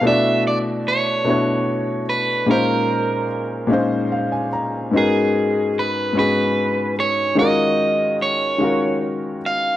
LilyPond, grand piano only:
\new Staff \with { instrumentName = "Grand piano" } { \time 6/8 \key gis \dorian \tempo 4. = 49 << { r2. | r2 eis''16 gis''16 ais''8 | r2. | r2. | } \\ { <b, a d' e' fis' d''>4 r8 <b, a d' e' fis' cis''>4 r8 | <ais, gis cis' dis' eis' bis'>4 r8 <ais, gis cis' dis' eis' bis'>4 r8 | <gis, b cis' dis' fis' ais'>4 r8 <gis, b cis' dis' fis' gis'>4 r8 | <dis gis cis' eis' fis' ais'>4 r8 <dis gis cis' eis' fis' ais'>4 r8 | } >> }